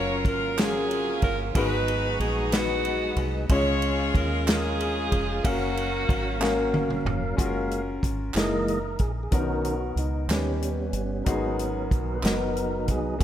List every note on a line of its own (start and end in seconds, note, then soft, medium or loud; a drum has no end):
0.00 0.25 F#1 medium
0.00 0.46 F#3 medium
0.00 1.51 F#3 medium
0.00 0.46 A#3 medium
0.00 1.51 A#3 medium
0.00 0.46 C#4 medium
0.00 1.51 C#4 medium
0.00 0.46 F4 medium
0.00 0.55 F4 medium
0.00 1.51 F4 medium
0.00 0.27 A#4 medium
0.00 0.47 A#4 medium
0.00 1.55 A#4 medium
0.00 0.23 C#5 loud
0.25 1.19 G#1 medium
0.25 0.59 A#4 medium
0.25 kick loud
0.25 ride bell soft
0.58 1.45 F#3 medium
0.58 1.44 A#3 medium
0.58 1.44 C#4 medium
0.58 1.52 C#4 medium
0.58 1.44 F4 medium
0.58 1.52 F4 medium
0.58 1.24 G#4 loud
0.58 1.45 G#4 medium
0.58 snare loud
0.58 clap loud
0.58 ride bell medium
0.91 ride bell soft
1.22 1.52 G1 medium
1.22 1.38 A#4 medium
1.22 kick medium
1.22 ride bell soft
1.54 2.16 G#1 loud
1.54 2.49 G#2 medium
1.54 3.45 F#3 medium
1.54 3.46 G#3 medium
1.54 3.45 B3 medium
1.54 2.41 B3 medium
1.54 2.41 D#4 medium
1.54 3.46 D#4 medium
1.54 2.50 D#4 medium
1.54 2.41 F#4 medium
1.54 2.50 F#4 medium
1.54 3.46 G#4 medium
1.54 2.42 G#4 medium
1.54 2.17 B4 loud
1.54 2.42 B4 medium
1.54 kick loud
1.54 ride bell medium
1.88 ride bell soft
2.20 3.13 A#1 medium
2.20 2.53 G#4 medium
2.20 ride bell soft
2.52 3.38 B3 medium
2.52 3.47 B3 medium
2.52 3.38 D#4 medium
2.52 3.47 D#4 medium
2.52 3.39 F#4 medium
2.52 3.26 F#4 loud
2.52 3.39 G#4 medium
2.52 3.39 B4 medium
2.52 snare loud
2.52 clap loud
2.52 ride bell medium
2.85 ride bell soft
3.16 3.47 C2 loud
3.16 ride bell soft
3.49 4.10 C#2 medium
3.49 4.44 C#3 medium
3.49 5.40 G#3 medium
3.49 4.35 G#3 medium
3.49 5.40 C#4 medium
3.49 4.36 C#4 medium
3.49 3.56 E4 medium
3.49 4.36 F4 medium
3.49 4.44 F4 medium
3.49 4.36 G#4 medium
3.49 4.44 G#4 medium
3.49 4.11 C#5 loud
3.49 4.37 C#5 medium
3.49 kick loud
3.49 ride bell medium
3.56 5.44 F4 medium
3.82 ride bell soft
4.14 5.08 D#2 loud
4.14 4.47 A#4 medium
4.14 kick loud
4.14 ride bell soft
4.46 5.32 G#3 medium
4.46 5.33 C#4 medium
4.46 5.40 C#4 medium
4.46 5.33 F4 medium
4.46 5.41 F4 medium
4.46 5.45 G#4 loud
4.46 5.33 G#4 medium
4.46 5.34 A#4 medium
4.46 snare loud
4.46 clap loud
4.46 ride bell medium
4.80 ride bell soft
5.12 5.42 F1 medium
5.12 kick medium
5.12 ride bell soft
5.43 6.05 F#1 loud
5.43 7.36 F#3 medium
5.43 6.30 A#3 medium
5.43 7.03 A#3 medium
5.43 7.36 A#3 medium
5.43 6.30 C#4 medium
5.43 7.03 C#4 medium
5.43 7.36 C#4 medium
5.43 7.07 F#4 medium
5.43 6.30 F#4 medium
5.43 6.31 A#4 medium
5.43 7.36 A#4 medium
5.43 6.30 F5 medium
5.43 7.36 F5 medium
5.43 kick loud
5.43 ride bell medium
5.77 ride bell soft
6.09 7.02 G#1 medium
6.09 kick loud
6.09 ride bell soft
6.40 7.26 A#3 medium
6.40 7.27 C#4 medium
6.40 7.27 F#4 medium
6.40 7.28 A#4 medium
6.40 7.27 F5 medium
6.40 snare medium
6.40 clap loud
6.74 high tom medium
6.90 mid tom medium
7.05 7.36 F1 loud
7.05 mid tom loud
7.37 7.99 F#1 medium
7.37 7.81 G#3 soft
7.37 7.82 A#3 soft
7.37 8.23 C#4 medium
7.37 8.24 F4 medium
7.37 8.24 F#4 medium
7.37 7.46 G#4 medium
7.37 7.82 F5 soft
7.37 kick loud
7.37 closed hi-hat medium
7.46 8.28 A#4 medium
7.71 closed hi-hat soft
8.03 8.33 G#1 medium
8.03 kick medium
8.03 closed hi-hat soft
8.34 8.96 F#1 medium
8.34 8.78 E3 soft
8.34 8.79 G#3 soft
8.34 8.79 A#3 soft
8.34 9.21 D#4 medium
8.34 9.21 E4 medium
8.34 9.22 G#4 medium
8.34 8.43 A4 medium
8.34 9.03 A#4 medium
8.34 8.79 D#5 medium
8.34 snare loud
8.34 clap medium
8.34 closed hi-hat medium
8.44 9.25 A#4 medium
8.68 closed hi-hat soft
8.99 9.30 A#1 medium
8.99 9.12 G#4 medium
8.99 kick medium
8.99 closed hi-hat soft
9.23 9.32 G#4 medium
9.31 9.93 B1 medium
9.31 10.26 B2 medium
9.31 9.75 D#3 soft
9.31 10.18 B3 medium
9.31 9.75 C#4 soft
9.31 9.39 D4 soft
9.31 10.18 F#4 medium
9.31 9.94 F#4 medium
9.31 9.75 A#4 soft
9.31 10.19 A#4 medium
9.31 kick medium
9.31 closed hi-hat medium
9.38 10.21 D#4 medium
9.64 closed hi-hat medium
9.96 10.26 C#2 medium
9.96 10.28 D#4 medium
9.96 closed hi-hat soft
10.28 10.90 D#2 medium
10.28 11.23 D#3 medium
10.28 11.24 G3 medium
10.28 11.24 B3 soft
10.28 11.15 C#4 medium
10.28 11.16 D#4 medium
10.28 11.16 G4 medium
10.28 snare loud
10.28 clap loud
10.28 closed hi-hat medium
10.33 11.89 C#4 medium
10.33 11.17 B4 medium
10.62 closed hi-hat soft
10.93 11.23 G1 medium
10.93 closed hi-hat soft
11.24 11.87 G#1 medium
11.24 12.20 G#2 medium
11.24 12.18 F#3 soft
11.24 12.12 B3 medium
11.24 12.19 B3 medium
11.24 12.12 D#4 medium
11.24 12.12 F#4 medium
11.24 12.19 A#4 soft
11.24 kick loud
11.24 closed hi-hat medium
11.28 12.13 G#4 medium
11.59 closed hi-hat soft
11.91 12.21 B1 medium
11.91 kick medium
11.91 closed hi-hat soft
12.14 12.23 B4 medium
12.23 12.88 F#1 medium
12.23 13.16 F#3 medium
12.23 13.09 B3 medium
12.23 13.16 B3 soft
12.23 13.09 D#4 medium
12.23 13.17 D#4 medium
12.23 13.10 F#4 medium
12.23 12.31 A#4 medium
12.23 12.79 A#4 medium
12.23 snare loud
12.23 clap medium
12.23 closed hi-hat medium
12.32 13.13 B4 medium
12.56 closed hi-hat soft
12.80 12.88 A#4 medium
12.88 13.18 C2 medium
12.88 13.20 G#4 medium
12.88 kick medium
12.88 closed hi-hat soft
13.19 13.23 C#2 loud
13.19 13.23 A#3 medium
13.19 closed hi-hat medium